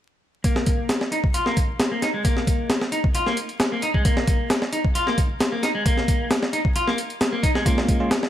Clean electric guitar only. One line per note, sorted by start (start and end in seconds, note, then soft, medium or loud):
0.44 0.88 A#3 medium
1.12 1.18 D#4 medium
1.34 1.45 F4 medium
1.46 1.56 A#3 medium
1.92 2.01 A#3 medium
2.02 2.09 D#4 medium
2.14 2.24 G#3 medium
2.25 2.69 A#3 medium
2.92 2.99 D#4 medium
3.15 3.26 F4 medium
3.27 3.37 A#3 medium
3.72 3.82 A#3 medium
3.83 3.89 D#4 medium
3.94 4.04 G#3 medium
4.05 4.49 A#3 medium
4.73 4.79 D#4 medium
4.95 5.06 F4 medium
5.07 5.17 A#3 medium
5.52 5.62 A#3 medium
5.63 5.69 D#4 medium
5.75 5.84 G#3 medium
5.86 6.30 A#3 medium
6.53 6.60 D#4 medium
6.76 6.86 F4 medium
6.87 6.97 A#3 medium
7.32 7.42 A#3 medium
7.43 7.50 D#4 medium
7.55 7.65 G#3 medium
7.66 8.10 A#3 medium